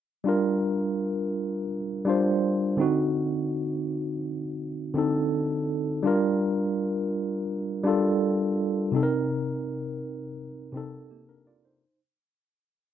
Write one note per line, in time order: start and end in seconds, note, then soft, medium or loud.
0.24 1.62 G3 medium
0.24 1.63 D4 medium
0.24 1.63 F4 medium
0.29 1.64 A#4 medium
2.05 2.78 G3 medium
2.05 2.79 D4 medium
2.05 2.80 F4 medium
2.10 2.80 C5 medium
2.77 4.15 D3 medium
2.77 4.15 C4 medium
2.77 4.16 D#4 medium
2.81 4.17 F#4 medium
4.94 5.97 D3 medium
4.94 5.98 C4 medium
4.94 5.99 D#4 medium
4.98 6.00 A4 medium
6.03 7.40 G3 medium
6.03 7.41 D4 medium
6.03 7.42 F4 medium
6.07 7.43 A#4 medium
7.83 8.87 G3 medium
7.83 8.88 D4 medium
7.83 8.88 F4 medium
7.88 8.89 A4 medium
8.92 10.29 C3 medium
8.92 10.30 C4 medium
8.92 10.31 D#4 medium
8.96 9.01 A4 medium
9.03 10.35 A#4 medium
10.72 11.76 C3 medium
10.72 11.10 C4 medium
10.72 11.11 D#4 medium
10.77 11.12 A4 medium
11.11 11.28 A#3 soft
11.11 11.28 G4 medium
11.29 11.46 D4 medium
11.29 11.46 A#4 medium
11.47 11.64 F4 medium
11.47 11.64 D5 medium
11.65 11.99 D#4 medium
11.65 11.99 C5 medium